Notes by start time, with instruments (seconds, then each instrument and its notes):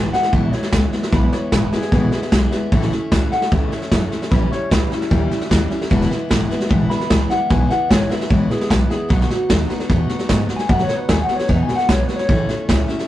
Already playing: steel-string acoustic guitar E3 G#3 B3 E4
0.13 steel-string acoustic guitar E3 G#3 B3 E4, clean electric guitar F#5, muted upright bass stroke, snare
0.23 snare
0.32 upright bass A1, steel-string acoustic guitar E2 B2 E3 G#3 B3 E4, clean electric guitar E5, kick, snare
0.53 steel-string acoustic guitar E3 G#3 B3 E4, clean electric guitar C#5, muted upright bass stroke, snare
0.63 snare
0.72 upright bass C#2, steel-string acoustic guitar E3 G#3 B3 E4, kick, snare, hi-hat pedal
0.91 steel-string acoustic guitar E3 G#3 B3 E4, muted upright bass stroke, snare
1.03 snare
1.12 upright bass B1, steel-string acoustic guitar E2 B2 E3 G#3 B3 E4, clean electric guitar B4, kick, snare
1.32 steel-string acoustic guitar E3 G#3 B3 E4, clean electric guitar C#5, muted upright bass stroke, snare
1.51 upright bass G#1, steel-string acoustic guitar E3 G#3 B3 E4, clean electric guitar B4, kick, snare, hi-hat pedal
1.72 steel-string acoustic guitar E3 G#3 B3 E4, clean electric guitar G#4, muted upright bass stroke, snare
1.82 snare
1.92 upright bass A1, steel-string acoustic guitar E2 B2 E3 G#3 B3 E4, kick, snare
2.11 steel-string acoustic guitar E3 G#3 B3 E4, muted upright bass stroke, snare
2.22 snare
2.31 upright bass B1, steel-string acoustic guitar E3 G#3 B3 E4, kick, snare, hi-hat pedal
2.51 steel-string acoustic guitar E3 G#3 B3 E4, muted upright bass stroke, snare
2.72 upright bass A1, steel-string acoustic guitar A2 E3 A3 C#4 E4, kick, snare
2.82 snare
2.92 steel-string acoustic guitar A3 C#4 E4, muted upright bass stroke, snare
3.11 upright bass C#2, steel-string acoustic guitar E3 A3 C#4 E4, kick, snare, hi-hat pedal
3.31 steel-string acoustic guitar A3 C#4 E4, clean electric guitar F#5, muted upright bass stroke, snare
3.42 snare
3.51 upright bass C#2, steel-string acoustic guitar A2 E3 A3 C#4 E4, clean electric guitar E5, kick, snare
3.71 steel-string acoustic guitar A3 C#4 E4, clean electric guitar C#5, muted upright bass stroke, snare
3.82 snare
3.91 upright bass F#2, steel-string acoustic guitar E3 A3 C#4 E4, kick, snare, hi-hat pedal
4.11 steel-string acoustic guitar A3 C#4 E4, muted upright bass stroke, snare
4.22 snare
4.31 upright bass A#1, steel-string acoustic guitar A#2 E3 G3 C#4 E4, clean electric guitar B4, kick, snare
4.51 steel-string acoustic guitar G3 C#4 E4, clean electric guitar C#5, muted upright bass stroke, snare
4.70 upright bass C#2, steel-string acoustic guitar E3 G3 C#4 E4, clean electric guitar B4, kick, snare, hi-hat pedal
4.91 steel-string acoustic guitar G3 C#4 E4, clean electric guitar E4, muted upright bass stroke, snare
5.02 snare
5.10 upright bass D#2, steel-string acoustic guitar A#2 E3 G3 C#4 E4, kick, snare
5.30 steel-string acoustic guitar G3 C#4 E4, muted upright bass stroke, snare
5.41 snare
5.49 upright bass D#2, steel-string acoustic guitar E3 G3 C#4 E4, kick, snare, hi-hat pedal
5.70 steel-string acoustic guitar G3 C#4 E4, muted upright bass stroke, snare
5.82 snare
5.90 upright bass E1, steel-string acoustic guitar E2 B2 E3 G#3 B3 E4, kick, snare
6.01 snare
6.10 steel-string acoustic guitar E3 G#3 B3 E4, muted upright bass stroke, snare
6.29 upright bass G#1, steel-string acoustic guitar E3 G#3 B3 E4, kick, snare, hi-hat pedal
6.49 steel-string acoustic guitar E3 G#3 B3 E4, muted upright bass stroke, snare
6.60 snare
6.69 upright bass A1, steel-string acoustic guitar E2 B2 E3 G#3 B3 E4, kick, snare
6.89 steel-string acoustic guitar E3 G#3 B3 E4, clean electric guitar B5, muted upright bass stroke, snare
7.01 snare
7.10 upright bass C#2, steel-string acoustic guitar E3 G#3 B3 E4, kick, snare, hi-hat pedal
7.30 steel-string acoustic guitar E3 G#3 B3 E4, clean electric guitar F#5, muted upright bass stroke, snare
7.50 upright bass B1, steel-string acoustic guitar E2 B2 E3 G#3 B3 E4, clean electric guitar G#5, kick, snare
7.68 steel-string acoustic guitar E3 G#3 B3 E4, clean electric guitar F#5, muted upright bass stroke, snare
7.89 upright bass G#1, steel-string acoustic guitar E3 G#3 B3 E4, clean electric guitar C#5, kick, snare, hi-hat pedal
8.09 steel-string acoustic guitar E3 G#3 B3 E4, clean electric guitar E5, muted upright bass stroke, snare
8.21 snare
8.29 upright bass A1, steel-string acoustic guitar E2 B2 E3 G#3 B3 E4, clean electric guitar C#5, kick, snare
8.48 steel-string acoustic guitar E3 G#3 B3 E4, clean electric guitar G#4, muted upright bass stroke, snare
8.61 snare
8.69 upright bass B1, steel-string acoustic guitar E3 G#3 B3 E4, clean electric guitar B4, kick, snare, hi-hat pedal
8.89 steel-string acoustic guitar E3 G#3 B3 E4, clean electric guitar G#4, muted upright bass stroke, snare
9.09 upright bass B1, steel-string acoustic guitar B2 F#3 B3 D#4 F#4, kick, snare
9.21 snare
9.30 steel-string acoustic guitar B3 D#4 F#4, clean electric guitar F#4, muted upright bass stroke, snare
9.49 upright bass D#2, steel-string acoustic guitar F#3 B3 D#4 F#4, clean electric guitar D#4, kick, snare, hi-hat pedal
9.69 steel-string acoustic guitar B3 D#4 F#4, muted upright bass stroke, snare
9.80 snare
9.89 upright bass E2, steel-string acoustic guitar B2 F#3 B3 D#4 F#4, kick, snare
10.09 steel-string acoustic guitar B3 D#4 F#4, muted upright bass stroke, snare
10.19 snare
10.29 upright bass G#2, steel-string acoustic guitar F#3 B3 D#4 F#4, kick, snare, hi-hat pedal
10.49 steel-string acoustic guitar B3 D#4 F#4, muted upright bass stroke, snare
10.56 clean electric guitar G#5, snare
10.68 upright bass F#2, steel-string acoustic guitar B2 F#3 B3 D#4 F#4, clean electric guitar F#5, kick, snare
10.79 clean electric guitar C#5, snare
10.88 steel-string acoustic guitar B3 D#4 F#4, muted upright bass stroke, snare
10.96 clean electric guitar B4
11.09 upright bass D#2, steel-string acoustic guitar F#3 B3 D#4 F#4, clean electric guitar G#5, kick, snare, hi-hat pedal
11.23 clean electric guitar F#5
11.29 steel-string acoustic guitar B3 D#4 F#4, muted upright bass stroke, snare
11.36 clean electric guitar C#5, snare
11.48 upright bass E2, steel-string acoustic guitar B2 F#3 B3 D#4 F#4, clean electric guitar B4, kick, snare
11.63 clean electric guitar G#5
11.68 steel-string acoustic guitar B3 D#4 F#4, muted upright bass stroke, snare
11.76 clean electric guitar F#5, snare
11.89 upright bass B1, steel-string acoustic guitar F#3 B3 D#4 F#4, clean electric guitar C#5, kick, snare, hi-hat pedal
12.03 clean electric guitar B4
12.08 steel-string acoustic guitar B3 D#4 F#4, muted upright bass stroke, snare
12.16 clean electric guitar C#5, snare
12.29 upright bass A1, steel-string acoustic guitar A2 E3 A3 C#4 E4, kick, snare
12.48 steel-string acoustic guitar A3 C#4 E4, muted upright bass stroke, snare
12.68 upright bass C#2, steel-string acoustic guitar E3 A3 C#4 E4, kick, snare, hi-hat pedal
12.88 steel-string acoustic guitar A3 C#4 E4, muted upright bass stroke, snare
12.99 snare